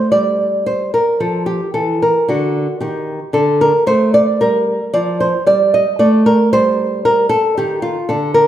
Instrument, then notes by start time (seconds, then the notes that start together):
nylon-string guitar
Already playing: C5
0.12 G3 D5
0.66 C5
0.94 A#4
1.20 F3 A4
1.46 G4
1.74 E3 A4
2.02 A#4
2.29 D3 F#4
2.81 D#3 G4
3.33 D3 A4
3.61 A#4
3.87 A3 C5
4.14 D5
4.41 G3 A#4
4.94 F3 D5
5.20 C5
5.46 G3 D5
5.74 D#5
5.99 A3 D5
6.26 A#4
6.53 G3 C5
7.05 A#4
7.29 A4
7.57 D#3 G4
7.82 F4
8.09 D3 A4
8.34 A#4